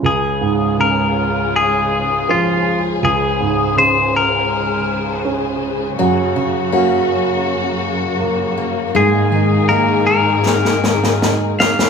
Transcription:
0.03 upright piano C#2, string section C#2 C#3 F4 G#4, clean electric guitar G#4
0.41 upright piano G#2
0.78 upright piano C#3, clean electric guitar A#4
1.56 clean electric guitar G#4
2.29 upright piano F3, clean electric guitar F4
3.03 string section C#2 C#3 C5, upright piano C#2, clean electric guitar G#4
3.40 upright piano G#2
3.77 upright piano C#3, clean electric guitar C5
4.16 clean electric guitar A#4
5.25 upright piano C#4
5.99 upright piano F#2, string section F#2 A#3 F#4, steel-string acoustic guitar F#3 F#4
6.36 upright piano C#3, steel-string acoustic guitar C#4
6.72 upright piano F#3, steel-string acoustic guitar A#3 C#4 F#4
8.20 upright piano A#3
8.58 steel-string acoustic guitar A#3
8.94 upright piano G#2, string section G#2 D#3 G#4, steel-string acoustic guitar G#3 G#4, clean electric guitar G#4
9.31 upright piano D#3, steel-string acoustic guitar D#4
9.69 upright piano A#3, steel-string acoustic guitar A#3 D#4 G#4, clean electric guitar A#4
10.07 clean electric guitar A#4
10.46 snare
10.65 snare
10.84 snare
11.04 snare
11.21 upright piano D#4, snare
11.59 steel-string acoustic guitar A#3, clean electric guitar F5, snare
11.79 snare

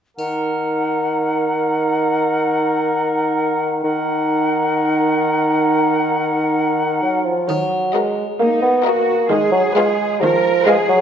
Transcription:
0.17 bassoon D#3, clarinet D#4, cor anglais A#4, flute F#5, triangle
3.82 bassoon D#3, clarinet D#4, cor anglais A#4, flute F#5
7.03 bassoon F#3
7.25 bassoon F3
7.48 viola section D#3, bassoon F#3, triangle
7.93 bassoon G#3, violin section F#4 A#4 D#5
8.39 bassoon A#3, viola section A#3, cello section D#4
8.62 bassoon B3
8.85 bassoon A#3, cello section F#4, violin section F#4 A#4 D#5
9.30 viola section D#3, bassoon G#3, cello section G#4
9.52 bassoon F#3
9.75 bassoon G#3, violin section F4 B4 F5
10.21 viola section D#3, bassoon F3, cello section A#4
10.66 bassoon G#3, violin section F4 B4 F5, cello section G#4
10.89 bassoon F#3

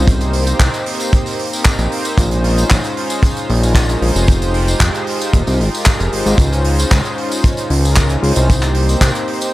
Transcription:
Already playing: analog synth bass C2
0.07 analog synth pad A#3 C4 D#4 G4 C5, kick, closed hi-hat, tambourine
0.21 closed hi-hat, tambourine
0.33 open hi-hat
0.47 analog synth pad A#3 C4 D#4 G4 C5, closed hi-hat, tambourine
0.60 analog synth bass C2, kick, clap, closed hi-hat, tambourine
0.74 closed hi-hat, tambourine
0.86 analog synth pad A#3 C4 D#4 G4 C5, open hi-hat
1.00 closed hi-hat, tambourine
1.13 kick, closed hi-hat, tambourine
1.26 open hi-hat, tambourine
1.39 open hi-hat
1.52 analog synth pad A#3 C4 D#4 G4 A#4, tambourine
1.65 kick, clap, closed hi-hat, tambourine
1.78 analog synth bass A#1, analog synth pad A#3 C4 D#4 G4 C5, closed hi-hat, tambourine
1.92 open hi-hat
2.05 closed hi-hat, tambourine
2.18 analog synth bass A#1, analog synth pad G#3 C#4 D#4 F4 C5, kick, closed hi-hat, tambourine
2.31 closed hi-hat, tambourine
2.44 open hi-hat
2.57 analog synth pad G#3 C#4 D#4 F4 C5, closed hi-hat, tambourine
2.70 analog synth bass A#1, kick, clap, closed hi-hat, tambourine
2.84 closed hi-hat, tambourine
2.96 analog synth pad G#3 C#4 D#4 F4 C5, open hi-hat
3.10 closed hi-hat, tambourine
3.23 kick, closed hi-hat, tambourine
3.37 closed hi-hat, tambourine
3.49 analog synth bass A#1, open hi-hat
3.62 analog synth pad G#3 C#4 D#4 F4 A#4, tambourine
3.75 kick, clap, closed hi-hat, tambourine
3.89 analog synth pad G#3 C#4 D#4 F4 C5, closed hi-hat, tambourine
4.02 analog synth bass A#1, open hi-hat
4.14 analog synth bass F1, closed hi-hat, tambourine
4.28 analog synth pad G#3 D#4 F4 G4 C5, kick, closed hi-hat, tambourine
4.42 closed hi-hat, tambourine
4.54 open hi-hat
4.67 analog synth pad G#3 D#4 F4 G4 C5, closed hi-hat, tambourine
4.80 analog synth bass F1, kick, clap, closed hi-hat, tambourine
4.94 closed hi-hat, tambourine
5.06 analog synth pad G#3 D#4 F4 G4 C5, open hi-hat
5.21 closed hi-hat, tambourine
5.33 analog synth bass D#1, kick, closed hi-hat, tambourine
5.47 analog synth bass C2, open hi-hat, tambourine
5.60 analog synth bass G#1, open hi-hat
5.73 analog synth pad G#3 D#4 F4 G4 A#4, tambourine
5.86 kick, clap, closed hi-hat, tambourine
5.99 analog synth bass F1, analog synth pad G#3 D#4 F4 G4 C5, closed hi-hat, tambourine
6.12 analog synth bass G#1, open hi-hat
6.26 analog synth bass G#1, closed hi-hat, tambourine
6.38 analog synth bass C#2, analog synth pad G#3 C#4 D#4 F4 C5, kick, closed hi-hat, tambourine
6.52 closed hi-hat, tambourine
6.64 open hi-hat
6.78 analog synth pad G#3 C#4 D#4 F4 C5, closed hi-hat, tambourine
6.91 analog synth bass C#2, kick, clap, closed hi-hat, tambourine
7.05 closed hi-hat, tambourine
7.17 analog synth pad G#3 C#4 D#4 F4 C5, open hi-hat
7.32 closed hi-hat, tambourine
7.44 kick, closed hi-hat, tambourine
7.57 closed hi-hat, tambourine
7.70 analog synth bass C#2, open hi-hat
7.83 analog synth pad G#3 C#4 D#4 F4 A#4, tambourine
7.96 kick, clap, closed hi-hat, tambourine
8.09 analog synth pad G#3 C#4 D#4 F4 C5, closed hi-hat, tambourine
8.23 analog synth bass C#2, open hi-hat
8.36 analog synth bass C2, closed hi-hat, tambourine
8.49 analog synth pad A#3 C4 D#4 G4 C5, kick, closed hi-hat, tambourine
8.62 clap, closed hi-hat, tambourine
8.74 open hi-hat
8.88 analog synth pad A#3 C4 D#4 G4 C5, closed hi-hat, tambourine
9.01 analog synth bass C2, kick, clap, closed hi-hat, tambourine
9.15 closed hi-hat, tambourine
9.28 analog synth pad A#3 C4 D#4 G4 C5, open hi-hat
9.41 closed hi-hat, tambourine

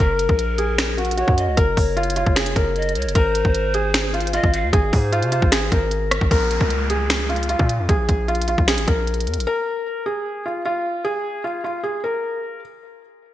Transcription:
0.00 808-style bass F#1, felt piano A#4, pan flute A#4
0.19 closed hi-hat
0.29 808-style bass A#1, kick
0.39 closed hi-hat
0.58 felt piano G#4, closed hi-hat
0.78 finger snap, snare, closed hi-hat
0.98 felt piano F#4, closed hi-hat
1.05 closed hi-hat
1.11 closed hi-hat
1.17 felt piano F#4, pan flute C#5, closed hi-hat
1.28 808-style bass F#2, kick
1.37 pan flute D#5, closed hi-hat
1.47 808-style bass C#2
1.57 808-style bass F#1, felt piano A#4, kick, closed hi-hat
1.77 808-style bass F#1, pan flute C#5, kick, open hi-hat
1.97 felt piano F4, closed hi-hat
2.03 closed hi-hat
2.10 closed hi-hat
2.16 felt piano F4, closed hi-hat
2.26 808-style bass F#1, kick
2.36 felt piano G#4, finger snap, snare, closed hi-hat
2.46 808-style bass F1, closed hi-hat
2.56 808-style bass F#1, felt piano A#4, kick, closed hi-hat
2.76 pan flute D#5, closed hi-hat
2.82 closed hi-hat
2.89 closed hi-hat
2.95 808-style bass C#2, pan flute C#5, closed hi-hat
3.02 808-style bass F#1, closed hi-hat
3.09 closed hi-hat
3.15 808-style bass G#1, felt piano A#4, pan flute C5, kick, closed hi-hat
3.35 closed hi-hat
3.45 808-style bass G#1, kick
3.55 closed hi-hat
3.74 felt piano G#4, closed hi-hat
3.94 finger snap, snare, closed hi-hat
4.14 felt piano F4, closed hi-hat
4.21 closed hi-hat
4.27 closed hi-hat
4.33 felt piano F4, pan flute D#5, closed hi-hat
4.43 808-style bass G#1, kick
4.53 pan flute F5, closed hi-hat
4.63 808-style bass D#2
4.73 808-style bass G#1, felt piano G#4, kick, closed hi-hat
4.93 808-style bass G#2, pan flute C5, kick, open hi-hat
5.12 felt piano F4, closed hi-hat
5.23 808-style bass C3, closed hi-hat
5.32 felt piano F4, closed hi-hat
5.42 808-style bass G#1, kick
5.52 felt piano G#4, finger snap, snare, closed hi-hat
5.72 808-style bass G#1, felt piano A#4, kick, closed hi-hat
5.91 closed hi-hat
6.11 cross-stick, closed hi-hat
6.21 808-style bass G#1, kick
6.31 808-style bass A#1, felt piano A#4, kick, closed hi-hat, downlifter
6.51 closed hi-hat
6.61 808-style bass C#2, kick
6.70 closed hi-hat
6.90 felt piano G#4, closed hi-hat
7.10 finger snap, snare, closed hi-hat
7.29 felt piano F4, closed hi-hat
7.36 closed hi-hat
7.43 closed hi-hat
7.49 felt piano F4, closed hi-hat
7.59 808-style bass A#2, kick
7.69 closed hi-hat
7.79 808-style bass F2
7.89 808-style bass A#1, felt piano G#4, kick, closed hi-hat
8.09 808-style bass A#1, kick, closed hi-hat
8.28 felt piano F4, closed hi-hat
8.35 closed hi-hat
8.42 closed hi-hat
8.48 felt piano F4, closed hi-hat
8.58 808-style bass A#1, kick
8.68 felt piano G#4, finger snap, snare, closed hi-hat
8.78 808-style bass G#1, closed hi-hat
8.88 808-style bass A#1, felt piano A#4, kick, closed hi-hat
9.07 closed hi-hat
9.14 closed hi-hat
9.20 closed hi-hat
9.27 808-style bass F2, closed hi-hat
9.34 808-style bass A#1, closed hi-hat
9.40 closed hi-hat
9.47 felt piano A#4
10.06 felt piano G#4
10.46 felt piano F4
10.65 felt piano F4
11.05 felt piano G#4
11.44 felt piano F4
11.64 felt piano F4
11.84 felt piano G#4
12.04 felt piano A#4

